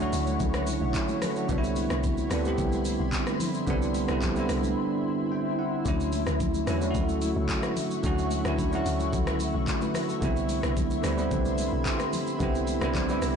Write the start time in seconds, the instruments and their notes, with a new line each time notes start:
Already playing: tine electric piano D3 E4 F#4, ambient pad E4 C#5 F#5 C#6
0.00 tine electric piano F#3 A3 C#4 D4 F#4, high conga, shaker
0.13 log drum bass D2, open hi-hat, shaker
0.27 high conga, shaker
0.40 log drum bass C#2, kick, low conga, shaker
0.54 cross-stick, high conga, shaker
0.67 open hi-hat, high conga, shaker
0.82 log drum bass B1
0.94 tine electric piano C#4 E4, kick, clap, shaker
1.09 high conga, shaker
1.22 tine electric piano F#4 A4, cross-stick, open hi-hat, low conga, shaker
1.36 tine electric piano D4 F#4, shaker
1.48 log drum bass C2, tine electric piano D3 G3 B3 C4 D4, ambient pad E5 B5 C6, kick, low conga, shaker
1.58 tine electric piano E4
1.64 shaker
1.76 open hi-hat, high conga, shaker
1.90 log drum bass C2, cross-stick, shaker
2.04 kick, low conga, shaker
2.18 high conga, shaker
2.29 log drum bass D2, tine electric piano D3 G3 B3 C4 D4, cross-stick, open hi-hat, shaker
2.44 tine electric piano D3 G3 B3 C4 G4, high conga, shaker
2.58 log drum bass C2, kick, low conga, shaker
2.72 high conga, shaker
2.85 open hi-hat, high conga, shaker
3.00 log drum bass B1
3.13 kick, clap, shaker
3.27 cross-stick, high conga, shaker
3.40 open hi-hat, low conga, shaker
3.54 shaker
3.66 log drum bass C2, tine electric piano D3 G3 B3 C4 D4, kick, low conga, shaker
3.82 shaker
3.94 open hi-hat, high conga, shaker
4.07 log drum bass C2, tine electric piano D3 G3 B3 C4 E4, cross-stick, shaker
4.22 kick, clap, low conga, shaker
4.35 tine electric piano D3 G3 B3 C4 E4, high conga, shaker
4.49 log drum bass C2, cross-stick, open hi-hat, shaker
4.63 high conga, shaker
5.32 tine electric piano G5
5.59 tine electric piano F#5
5.84 log drum bass D2, tine electric piano D3 F#3 A3 C#4 E4, ambient pad F#5 C#6, kick, low conga, shaker
6.00 shaker
6.13 open hi-hat, high conga, shaker
6.27 log drum bass D2, cross-stick, shaker
6.40 kick, low conga, shaker
6.54 high conga, shaker
6.66 log drum bass E2, tine electric piano D3 F#3 A3 C#4 E4, cross-stick, open hi-hat, shaker
6.80 tine electric piano D3 F#3 A3 C#4 E4, high conga, shaker
6.91 tine electric piano F#4, low conga
6.95 log drum bass D2, kick, shaker
7.09 high conga, shaker
7.22 open hi-hat, high conga, shaker
7.36 log drum bass C#2
7.49 kick, clap, shaker
7.63 cross-stick, high conga, shaker
7.76 open hi-hat, low conga, shaker
7.91 shaker
8.02 log drum bass D2, tine electric piano D3 F#3 A3 C#4 F#4, kick, low conga, shaker
8.18 shaker
8.31 open hi-hat, high conga, shaker
8.44 log drum bass D2, tine electric piano D3 F#3 A3 C#4 E4, cross-stick, shaker
8.59 kick, low conga, shaker
8.71 tine electric piano F#3 A3 C#4 D4 F#4, high conga, shaker
8.86 log drum bass D2, open hi-hat, shaker
9.00 high conga, shaker
9.13 log drum bass C#2, kick, low conga, shaker
9.27 cross-stick, high conga, shaker
9.40 open hi-hat, high conga, shaker
9.54 log drum bass B1
9.67 tine electric piano F#4 A4, kick, clap, shaker
9.82 tine electric piano B4, high conga, shaker
9.94 cross-stick, open hi-hat, low conga, shaker
10.09 tine electric piano F#4 A4, shaker
10.21 log drum bass C2, tine electric piano D3 G3 B3 C4 E4, ambient pad E4 B5 C6, kick, low conga, shaker
10.37 shaker
10.49 open hi-hat, high conga, shaker
10.63 log drum bass C2, cross-stick, shaker
10.77 kick, low conga, shaker
10.91 high conga, shaker
11.02 log drum bass D2, tine electric piano D3 G3 B3 C4 E4, cross-stick, open hi-hat, shaker
11.17 tine electric piano D3 G3 B3 C4 G4, high conga, shaker
11.31 log drum bass C2, kick, low conga, shaker
11.45 high conga, shaker
11.58 open hi-hat, high conga, shaker
11.73 log drum bass B1
11.86 kick, clap, shaker
12.00 cross-stick, high conga, shaker
12.13 open hi-hat, low conga, shaker
12.27 shaker
12.39 log drum bass C2, tine electric piano D3 G3 B3 C4 E4, ambient pad D6, kick, low conga, shaker
12.55 shaker
12.67 open hi-hat, high conga, shaker
12.80 log drum bass C2, tine electric piano D3 G3 B3 C4 E4, cross-stick, shaker
12.95 kick, clap, low conga, shaker
13.08 tine electric piano D3 G3 B3 C4 E4, high conga, shaker
13.22 log drum bass C2, cross-stick, open hi-hat, shaker